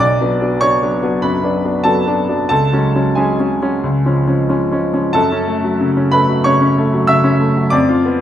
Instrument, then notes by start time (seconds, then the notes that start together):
grand piano
Already playing: B1
0.00 D5 D6
0.21 F#3 B3 D4
0.41 F#3 B3 D4
0.61 F#3 B3 D4 C#5 C#6
0.82 F#3 B3 D4
1.03 F#3 B3 D4
1.22 F#2 B4 B5
1.43 F#3 B3 D4
1.64 F#3 B3 D4
1.84 F#3 B3 D4 A4 A5
2.07 F#3 B3 D4
2.28 F#3 B3 D4
2.49 C#2 A4 A5
2.72 F#3 G#3 C#4
2.95 F#3 G#3 C#4
3.15 F#3 G#3 C#4 G#4 G#5
3.39 F#3 G#3 C#4
3.62 F#3 G#3 C#4
3.84 C#2
4.05 F3 G#3 C#4
4.27 F3 G#3 C#4
4.49 F3 G#3 C#4
4.72 F3 G#3 C#4
4.93 F3 G#3 C#4
5.13 F#2 A4 A5
5.32 C#4
5.48 A3
5.64 F#3
5.81 C#3
5.97 C#4
6.12 A3 B4 B5
6.29 F#3
6.44 C#3 C#5 C#6
6.62 C#4
6.78 A3
6.94 F#3
7.07 C#3 E5 E6
7.24 C#4
7.40 A3
7.57 F#3
7.70 F2 D5 D6
7.89 F4
8.05 B3